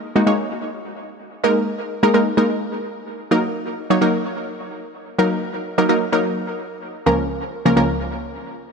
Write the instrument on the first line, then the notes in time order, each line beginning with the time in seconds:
synth pluck
0.16 G#3 A#3 D#4 F#4
0.27 G#3 A#3 D#4 C#5
1.44 G#3 A#3 D#4 A#4
2.03 G#3 A#3 D#4 A#4
2.14 G#3 A#3 D#4 A#4
2.37 G#3 A#3 D#4 A#4
3.31 F#3 A#3 D#4 A#4
3.90 F#3 A#3 D#4 C#5
4.01 F#3 A#3 D#4 A#4
5.19 F#3 A#3 D#4 A#4
5.78 F#3 A#3 D#4 A#4
5.89 F#3 A#3 D#4 A#4
6.12 F#3 A#3 D#4 A#4
7.06 C#2 F3 A#3 C#4 A#4
7.65 C#2 F3 A#3 C#4 A#4
7.76 C#2 F3 A#3 C#4 A#4